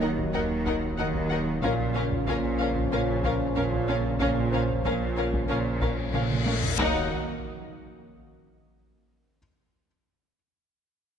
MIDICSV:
0, 0, Header, 1, 13, 480
1, 0, Start_track
1, 0, Tempo, 645161
1, 1209, Time_signature, 4, 2, 24, 8
1, 8321, End_track
2, 0, Start_track
2, 0, Title_t, "Violin section"
2, 0, Program_c, 0, 48
2, 9, Note_on_c, 0, 78, 58
2, 69, Note_off_c, 0, 78, 0
2, 248, Note_on_c, 0, 78, 59
2, 308, Note_off_c, 0, 78, 0
2, 489, Note_on_c, 0, 78, 63
2, 549, Note_off_c, 0, 78, 0
2, 724, Note_on_c, 0, 78, 69
2, 783, Note_off_c, 0, 78, 0
2, 962, Note_on_c, 0, 78, 66
2, 1022, Note_off_c, 0, 78, 0
2, 1204, Note_on_c, 0, 77, 74
2, 1264, Note_off_c, 0, 77, 0
2, 1443, Note_on_c, 0, 77, 66
2, 1502, Note_off_c, 0, 77, 0
2, 1688, Note_on_c, 0, 77, 74
2, 1748, Note_off_c, 0, 77, 0
2, 1927, Note_on_c, 0, 77, 70
2, 1986, Note_off_c, 0, 77, 0
2, 2174, Note_on_c, 0, 77, 67
2, 2233, Note_off_c, 0, 77, 0
2, 2408, Note_on_c, 0, 77, 65
2, 2468, Note_off_c, 0, 77, 0
2, 2643, Note_on_c, 0, 77, 72
2, 2702, Note_off_c, 0, 77, 0
2, 2887, Note_on_c, 0, 77, 71
2, 2946, Note_off_c, 0, 77, 0
2, 3122, Note_on_c, 0, 77, 78
2, 3182, Note_off_c, 0, 77, 0
2, 3367, Note_on_c, 0, 77, 67
2, 3427, Note_off_c, 0, 77, 0
2, 3617, Note_on_c, 0, 77, 70
2, 3677, Note_off_c, 0, 77, 0
2, 3849, Note_on_c, 0, 77, 63
2, 3908, Note_off_c, 0, 77, 0
2, 4093, Note_on_c, 0, 77, 62
2, 4152, Note_off_c, 0, 77, 0
2, 4328, Note_on_c, 0, 77, 57
2, 4388, Note_off_c, 0, 77, 0
2, 4564, Note_on_c, 0, 77, 64
2, 4624, Note_off_c, 0, 77, 0
2, 4805, Note_on_c, 0, 77, 55
2, 4864, Note_off_c, 0, 77, 0
2, 5048, Note_on_c, 0, 78, 88
2, 5316, Note_off_c, 0, 78, 0
2, 8321, End_track
3, 0, Start_track
3, 0, Title_t, "Grand piano"
3, 0, Program_c, 1, 0
3, 0, Control_c, 1, 64, 127
3, 0, Note_on_c, 1, 82, 60
3, 704, Note_off_c, 1, 82, 0
3, 1220, Note_on_c, 1, 65, 55
3, 1223, Control_c, 1, 64, 0
3, 1225, Note_on_c, 1, 77, 53
3, 1355, Control_c, 1, 64, 127
3, 2625, Note_off_c, 1, 65, 0
3, 2627, Note_off_c, 1, 77, 0
3, 3361, Note_on_c, 1, 72, 71
3, 4775, Note_off_c, 1, 72, 0
3, 5062, Control_c, 1, 64, 0
3, 5185, Control_c, 1, 64, 127
3, 6984, Control_c, 1, 64, 0
3, 8321, End_track
4, 0, Start_track
4, 0, Title_t, "Violin section"
4, 0, Program_c, 2, 48
4, 4, Note_on_c, 2, 70, 64
4, 63, Note_off_c, 2, 70, 0
4, 248, Note_on_c, 2, 70, 72
4, 308, Note_off_c, 2, 70, 0
4, 494, Note_on_c, 2, 70, 69
4, 553, Note_off_c, 2, 70, 0
4, 736, Note_on_c, 2, 70, 66
4, 795, Note_off_c, 2, 70, 0
4, 982, Note_on_c, 2, 70, 65
4, 1041, Note_off_c, 2, 70, 0
4, 1220, Note_on_c, 2, 70, 76
4, 1280, Note_off_c, 2, 70, 0
4, 1462, Note_on_c, 2, 70, 68
4, 1522, Note_off_c, 2, 70, 0
4, 1705, Note_on_c, 2, 70, 74
4, 1764, Note_off_c, 2, 70, 0
4, 1943, Note_on_c, 2, 70, 70
4, 2002, Note_off_c, 2, 70, 0
4, 2177, Note_on_c, 2, 70, 75
4, 2237, Note_off_c, 2, 70, 0
4, 2421, Note_on_c, 2, 70, 71
4, 2481, Note_off_c, 2, 70, 0
4, 2651, Note_on_c, 2, 70, 68
4, 2711, Note_off_c, 2, 70, 0
4, 2895, Note_on_c, 2, 70, 65
4, 2954, Note_off_c, 2, 70, 0
4, 3135, Note_on_c, 2, 70, 76
4, 3194, Note_off_c, 2, 70, 0
4, 3374, Note_on_c, 2, 70, 65
4, 3433, Note_off_c, 2, 70, 0
4, 3611, Note_on_c, 2, 70, 71
4, 3671, Note_off_c, 2, 70, 0
4, 3843, Note_on_c, 2, 70, 65
4, 3902, Note_off_c, 2, 70, 0
4, 4085, Note_on_c, 2, 70, 70
4, 4145, Note_off_c, 2, 70, 0
4, 4327, Note_on_c, 2, 70, 62
4, 4386, Note_off_c, 2, 70, 0
4, 4563, Note_on_c, 2, 70, 62
4, 4622, Note_off_c, 2, 70, 0
4, 4798, Note_on_c, 2, 70, 60
4, 4857, Note_off_c, 2, 70, 0
4, 5047, Note_on_c, 2, 70, 81
4, 5316, Note_off_c, 2, 70, 0
4, 8321, End_track
5, 0, Start_track
5, 0, Title_t, "Viola section"
5, 0, Program_c, 3, 48
5, 14, Note_on_c, 3, 63, 61
5, 74, Note_off_c, 3, 63, 0
5, 257, Note_on_c, 3, 63, 65
5, 316, Note_off_c, 3, 63, 0
5, 495, Note_on_c, 3, 63, 61
5, 555, Note_off_c, 3, 63, 0
5, 738, Note_on_c, 3, 63, 66
5, 798, Note_off_c, 3, 63, 0
5, 976, Note_on_c, 3, 63, 62
5, 1036, Note_off_c, 3, 63, 0
5, 1214, Note_on_c, 3, 61, 79
5, 1273, Note_off_c, 3, 61, 0
5, 1450, Note_on_c, 3, 61, 68
5, 1510, Note_off_c, 3, 61, 0
5, 1696, Note_on_c, 3, 61, 76
5, 1756, Note_off_c, 3, 61, 0
5, 1938, Note_on_c, 3, 61, 67
5, 1998, Note_off_c, 3, 61, 0
5, 2175, Note_on_c, 3, 61, 75
5, 2234, Note_off_c, 3, 61, 0
5, 2413, Note_on_c, 3, 61, 66
5, 2473, Note_off_c, 3, 61, 0
5, 2652, Note_on_c, 3, 61, 66
5, 2712, Note_off_c, 3, 61, 0
5, 2892, Note_on_c, 3, 61, 67
5, 2951, Note_off_c, 3, 61, 0
5, 3130, Note_on_c, 3, 61, 82
5, 3189, Note_off_c, 3, 61, 0
5, 3367, Note_on_c, 3, 61, 72
5, 3427, Note_off_c, 3, 61, 0
5, 3605, Note_on_c, 3, 61, 75
5, 3665, Note_off_c, 3, 61, 0
5, 3843, Note_on_c, 3, 61, 63
5, 3902, Note_off_c, 3, 61, 0
5, 4082, Note_on_c, 3, 61, 75
5, 4141, Note_off_c, 3, 61, 0
5, 4326, Note_on_c, 3, 61, 58
5, 4386, Note_off_c, 3, 61, 0
5, 4564, Note_on_c, 3, 61, 60
5, 4623, Note_off_c, 3, 61, 0
5, 4808, Note_on_c, 3, 61, 56
5, 4867, Note_off_c, 3, 61, 0
5, 5053, Note_on_c, 3, 63, 92
5, 5319, Note_off_c, 3, 63, 0
5, 8321, End_track
6, 0, Start_track
6, 0, Title_t, "Analog synth pad"
6, 0, Program_c, 4, 89
6, 0, Note_on_c, 4, 54, 67
6, 0, Note_on_c, 4, 58, 73
6, 0, Note_on_c, 4, 63, 65
6, 0, Note_on_c, 4, 75, 72
6, 1175, Note_off_c, 4, 58, 0
6, 1176, Note_off_c, 4, 54, 0
6, 1176, Note_off_c, 4, 63, 0
6, 1176, Note_off_c, 4, 75, 0
6, 1204, Note_on_c, 4, 61, 78
6, 1205, Note_on_c, 4, 49, 76
6, 1206, Note_on_c, 4, 65, 84
6, 1208, Note_on_c, 4, 58, 83
6, 5019, Note_off_c, 4, 58, 0
6, 5046, Note_off_c, 4, 61, 0
6, 5046, Note_on_c, 4, 51, 93
6, 5046, Note_on_c, 4, 66, 91
6, 5047, Note_off_c, 4, 49, 0
6, 5047, Note_off_c, 4, 65, 0
6, 5047, Note_on_c, 4, 58, 88
6, 5049, Note_on_c, 4, 75, 85
6, 5315, Note_off_c, 4, 51, 0
6, 5315, Note_off_c, 4, 66, 0
6, 5316, Note_off_c, 4, 58, 0
6, 5317, Note_off_c, 4, 75, 0
6, 8321, End_track
7, 0, Start_track
7, 0, Title_t, "French horn section"
7, 0, Program_c, 5, 60
7, 0, Note_on_c, 5, 54, 60
7, 0, Note_on_c, 5, 58, 58
7, 1181, Note_off_c, 5, 58, 0
7, 1214, Note_on_c, 5, 61, 77
7, 1659, Note_off_c, 5, 54, 0
7, 1688, Note_on_c, 5, 53, 78
7, 4784, Note_off_c, 5, 61, 0
7, 4810, Note_off_c, 5, 53, 0
7, 5044, Note_on_c, 5, 54, 84
7, 5045, Note_on_c, 5, 58, 84
7, 5255, Note_off_c, 5, 54, 0
7, 5255, Note_off_c, 5, 58, 0
7, 8321, End_track
8, 0, Start_track
8, 0, Title_t, "Cello section"
8, 0, Program_c, 6, 48
8, 0, Note_on_c, 6, 51, 75
8, 192, Note_off_c, 6, 51, 0
8, 249, Note_on_c, 6, 51, 81
8, 672, Note_off_c, 6, 51, 0
8, 731, Note_on_c, 6, 51, 80
8, 1153, Note_off_c, 6, 51, 0
8, 1211, Note_on_c, 6, 46, 86
8, 1633, Note_off_c, 6, 46, 0
8, 1691, Note_on_c, 6, 46, 79
8, 2113, Note_off_c, 6, 46, 0
8, 2166, Note_on_c, 6, 46, 85
8, 2591, Note_off_c, 6, 46, 0
8, 2653, Note_on_c, 6, 46, 84
8, 3074, Note_off_c, 6, 46, 0
8, 3125, Note_on_c, 6, 46, 88
8, 3550, Note_off_c, 6, 46, 0
8, 3614, Note_on_c, 6, 46, 81
8, 4035, Note_off_c, 6, 46, 0
8, 4086, Note_on_c, 6, 46, 83
8, 4511, Note_off_c, 6, 46, 0
8, 4568, Note_on_c, 6, 46, 72
8, 4992, Note_off_c, 6, 46, 0
8, 5048, Note_on_c, 6, 39, 88
8, 5316, Note_off_c, 6, 39, 0
8, 8321, End_track
9, 0, Start_track
9, 0, Title_t, "Double bass section"
9, 0, Program_c, 7, 48
9, 0, Note_on_c, 7, 39, 76
9, 193, Note_off_c, 7, 39, 0
9, 253, Note_on_c, 7, 39, 85
9, 674, Note_off_c, 7, 39, 0
9, 730, Note_on_c, 7, 39, 87
9, 1153, Note_off_c, 7, 39, 0
9, 1209, Note_on_c, 7, 34, 91
9, 1632, Note_off_c, 7, 34, 0
9, 1683, Note_on_c, 7, 34, 87
9, 2109, Note_off_c, 7, 34, 0
9, 2165, Note_on_c, 7, 34, 92
9, 2590, Note_off_c, 7, 34, 0
9, 2643, Note_on_c, 7, 34, 85
9, 3069, Note_off_c, 7, 34, 0
9, 3126, Note_on_c, 7, 34, 89
9, 3551, Note_off_c, 7, 34, 0
9, 3603, Note_on_c, 7, 34, 78
9, 4029, Note_off_c, 7, 34, 0
9, 4089, Note_on_c, 7, 34, 88
9, 4513, Note_off_c, 7, 34, 0
9, 4571, Note_on_c, 7, 34, 80
9, 4993, Note_off_c, 7, 34, 0
9, 5049, Note_on_c, 7, 39, 89
9, 5317, Note_off_c, 7, 39, 0
9, 8321, End_track
10, 0, Start_track
10, 0, Title_t, "Sub bass"
10, 0, Program_c, 8, 38
10, 0, Note_on_c, 8, 27, 75
10, 1209, Note_on_c, 8, 34, 83
10, 1221, Note_off_c, 8, 27, 0
10, 5043, Note_off_c, 8, 34, 0
10, 5047, Note_on_c, 8, 27, 101
10, 5316, Note_off_c, 8, 27, 0
10, 8321, End_track
11, 0, Start_track
11, 0, Title_t, "Impact"
11, 0, Program_c, 10, 103
11, 5046, Note_on_c, 10, 60, 81
11, 6968, Note_off_c, 10, 60, 0
11, 8321, End_track
12, 0, Start_track
12, 0, Title_t, "Reverse cymbal"
12, 0, Program_c, 11, 119
12, 3127, Note_on_c, 11, 60, 73
12, 5048, Note_off_c, 11, 60, 0
12, 8321, End_track
13, 0, Start_track
13, 0, Title_t, "Taiko and cinematic ensemble drums"
13, 129, Note_on_c, 9, 41, 83
13, 203, Note_off_c, 9, 41, 0
13, 491, Note_on_c, 9, 41, 77
13, 566, Note_off_c, 9, 41, 0
13, 729, Note_on_c, 9, 43, 56
13, 804, Note_off_c, 9, 43, 0
13, 847, Note_on_c, 9, 41, 78
13, 921, Note_off_c, 9, 41, 0
13, 1207, Note_on_c, 9, 41, 93
13, 1281, Note_off_c, 9, 41, 0
13, 1567, Note_on_c, 9, 43, 54
13, 1642, Note_off_c, 9, 43, 0
13, 1688, Note_on_c, 9, 41, 86
13, 1763, Note_off_c, 9, 41, 0
13, 2047, Note_on_c, 9, 41, 78
13, 2121, Note_off_c, 9, 41, 0
13, 2408, Note_on_c, 9, 41, 81
13, 2483, Note_off_c, 9, 41, 0
13, 2648, Note_on_c, 9, 43, 62
13, 2723, Note_off_c, 9, 43, 0
13, 2769, Note_on_c, 9, 41, 84
13, 2843, Note_off_c, 9, 41, 0
13, 3127, Note_on_c, 9, 41, 95
13, 3201, Note_off_c, 9, 41, 0
13, 3488, Note_on_c, 9, 43, 55
13, 3563, Note_off_c, 9, 43, 0
13, 3609, Note_on_c, 9, 41, 87
13, 3683, Note_off_c, 9, 41, 0
13, 3970, Note_on_c, 9, 41, 87
13, 4044, Note_off_c, 9, 41, 0
13, 4327, Note_on_c, 9, 41, 82
13, 4402, Note_off_c, 9, 41, 0
13, 4567, Note_on_c, 9, 47, 88
13, 4642, Note_off_c, 9, 47, 0
13, 4688, Note_on_c, 9, 47, 91
13, 4762, Note_off_c, 9, 47, 0
13, 4806, Note_on_c, 9, 48, 95
13, 4881, Note_off_c, 9, 48, 0
13, 4925, Note_on_c, 9, 43, 101
13, 4999, Note_off_c, 9, 43, 0
13, 5045, Note_on_c, 9, 41, 106
13, 5120, Note_off_c, 9, 41, 0
13, 8321, End_track
0, 0, End_of_file